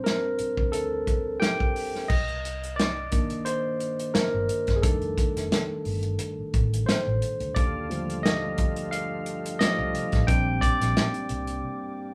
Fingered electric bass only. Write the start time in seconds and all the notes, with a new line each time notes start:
0.40 muted fingered electric bass stroke
0.57 D2
2.10 C2
4.15 muted fingered electric bass stroke
4.34 G1
4.68 G1
4.84 F1
5.36 F1
5.86 G1
6.38 muted fingered electric bass stroke
6.54 A1
7.07 A1
7.40 D2
7.56 D#2
9.60 muted fingered electric bass stroke
9.78 C2
10.13 A1
10.28 A#1
10.80 A#1
11.30 C2